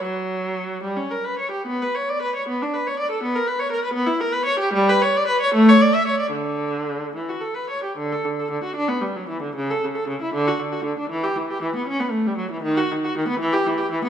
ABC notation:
X:1
M:6/8
L:1/16
Q:3/8=77
K:Bm
V:1 name="Viola"
F,6 G, C ^A B c G | B, B c d B c B, D B c d A | B, ^A B c A B B, E A B c G | [K:D] G, B c d B c A, c d e c d |
D,6 E, F A B c G | D, A D, A D, F D B, G, F, E, D, | C, A C, A C, E D, F D, F D, D | E, G E, G E, B, C B, A, G, F, E, |
^D, F D, F D, B, E, G E, G E, B, |]